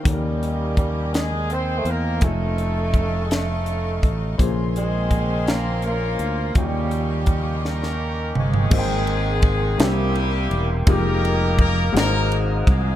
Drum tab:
CC |------------|------------|------------|------------|
RD |------------|------------|------------|------------|
HH |x-x-x-x-x-x-|x-x-x-x-x-x-|x-x-x-x-x-x-|x-x-x-------|
SD |------o-----|------o-----|------o-----|------oo----|
T2 |------------|------------|------------|----------o-|
FT |------------|------------|------------|-----------o|
BD |o---o-------|o---o-----o-|o---o-------|o---o-------|

CC |x-----------|------------|
RD |--x-x-x-x-x-|x-x-x-x-x-x-|
HH |------------|------------|
SD |------o-----|------o-----|
T2 |------------|------------|
FT |------------|------------|
BD |o---o-------|o---o-----o-|